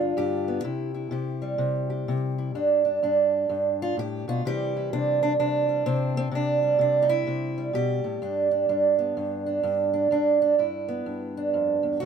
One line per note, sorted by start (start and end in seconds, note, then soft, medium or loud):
0.00 0.16 G2 medium
0.00 0.66 D3 soft
0.00 0.17 D4 soft
0.00 0.64 F4 loud
0.17 0.64 G2 medium
0.17 1.11 G4 medium
0.48 0.64 B3 soft
0.64 1.10 C3 medium
0.64 0.93 E4 medium
0.94 2.37 E4 soft
1.11 1.57 C3 medium
1.11 1.89 G4 medium
1.42 4.46 G3 medium
1.58 2.07 C3 medium
1.90 3.82 G4 soft
2.08 2.53 C3 medium
2.38 2.53 E4 soft
2.55 3.02 G2 medium
2.55 2.84 D4 medium
2.85 3.02 D4 soft
3.03 3.48 G2 medium
3.03 4.43 D4 medium
3.49 3.96 G2 medium
3.82 3.98 F4 loud
3.97 4.26 A2 medium
3.97 4.28 G4 loud
4.28 4.45 B2 medium
4.28 4.45 F4 medium
4.45 4.93 C3 medium
4.45 6.32 E3 soft
4.45 5.69 G3 medium
4.45 4.76 E4 soft
4.45 4.93 G4 loud
4.77 6.33 E4 soft
4.93 5.39 C3 medium
4.93 5.21 D4 medium
5.23 5.32 D4 medium
5.39 5.85 C3 medium
5.39 6.34 D4 medium
5.69 5.86 G3 soft
5.86 6.30 C3 medium
5.86 6.16 C4 loud
6.17 6.27 C4 loud
6.31 6.78 C3 medium
6.31 6.80 D4 medium
6.63 7.57 G3 soft
6.79 7.26 C3 medium
6.79 7.09 D4 medium
7.02 7.11 D#4 medium
7.09 7.74 E4 loud
7.27 7.73 C3 medium
7.58 8.98 G3 soft
7.73 8.04 B2 medium
7.73 9.17 G4 loud
8.04 8.21 A2 medium
8.22 8.68 G2 medium
8.22 8.51 D4 soft
8.51 8.69 D4 soft
8.69 9.17 G2 medium
8.69 9.46 D4 soft
8.99 10.09 B3 soft
9.17 9.62 G2 medium
9.46 9.93 D4 soft
9.63 10.10 G2 medium
9.94 10.12 D4 soft
10.11 10.57 G2 medium
10.11 10.41 D4 medium
10.42 10.59 D4 medium
10.58 11.05 G2 medium
10.58 11.35 E4 medium
10.88 11.98 B3 medium
11.06 12.00 G2 medium
11.37 11.99 D4 medium
11.54 11.83 F2 medium
11.83 12.00 E2 medium
12.00 12.05 D2 medium
12.00 12.05 F#4 medium